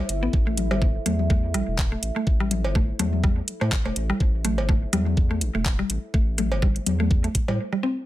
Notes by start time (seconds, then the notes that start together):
Already playing: E4 A4 E5
0.09 G1, closed hi-hat
0.23 A1 B3
0.33 A1, kick
0.47 A3
0.57 closed hi-hat, high tom
0.71 G1 G3, cowbell
0.82 kick
1.06 E2 A3, closed hi-hat, high tom
1.19 high tom
1.30 A3, kick
1.54 A1 G3, closed hi-hat
1.68 E1
1.78 kick, clap
1.92 A3
2.03 A1, closed hi-hat
2.16 A3
2.27 A1, kick
2.40 G3
2.51 closed hi-hat, high tom
2.64 G1, cowbell
2.75 A3, kick
2.99 E2 A3, closed hi-hat, high tom
3.13 high tom
3.24 G3, kick
3.48 closed hi-hat
3.61 A2 A3, cowbell
3.72 kick, clap
3.85 E1 A3, cowbell
3.96 A1, closed hi-hat
4.10 G3
4.20 A1, kick
4.45 A3, closed hi-hat, high tom
4.58 G1, cowbell
4.69 A3, kick
4.93 E2 G3, closed hi-hat, high tom
5.06 high tom
5.17 kick
5.31 A3
5.41 A1, closed hi-hat
5.55 E1 A3
5.66 kick, clap
5.79 G3
5.90 A1, closed hi-hat
6.14 A1 A3, kick
6.38 A3, closed hi-hat, high tom
6.52 G1, cowbell
6.62 G3, kick
6.76 closed hi-hat
6.86 E2, closed hi-hat, high tom
7.00 A3, high tom
7.11 kick
7.24 A3, closed hi-hat
7.35 kick, closed hi-hat
7.48 A2 G3, cowbell
7.73 G3
7.83 C4